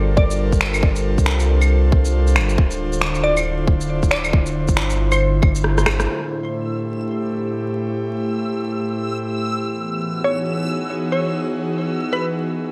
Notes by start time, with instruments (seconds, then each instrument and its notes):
Already playing: sub bass G1, analog synth pad G3 D4 F4 A4 A#4 C5
0.17 synth pluck D5, kick
0.31 shaker
0.52 kick, shaker
0.61 finger snap
0.74 claves, shaker
0.83 kick
0.96 shaker
1.18 sub bass C2, kick, shaker
1.26 finger snap
1.40 shaker
1.62 claves, shaker
1.92 kick
2.05 shaker
2.27 shaker
2.36 sub bass G1, finger snap, claves
2.49 shaker
2.58 sub bass D1, analog synth pad D3, kick
2.71 shaker
2.88 analog synth pad E4
2.93 shaker
3.01 finger snap
3.15 shaker
3.24 synth pluck D5
3.37 claves, shaker
3.68 kick
3.81 shaker
4.03 kick, shaker
4.11 synth pluck D5, finger snap
4.24 claves, shaker
4.33 kick
4.46 shaker
4.68 sub bass G1, kick, shaker
4.77 finger snap
4.90 shaker
5.12 synth pluck C5, claves, shaker
5.42 kick, claves
5.55 shaker
5.64 cross-stick
5.78 cross-stick, shaker
5.86 sub bass G1, finger snap, cross-stick, claves
6.00 cross-stick, shaker
6.07 analog synth pad A2, synth texture E6
6.23 analog synth pad A3
6.57 analog synth pad G4
9.59 analog synth pad E3
9.67 analog synth pad B3
9.90 analog synth pad F#4 G#4
9.96 analog synth pad D#4
10.24 synth pluck C#5
11.12 synth pluck C#5
12.13 synth pluck B4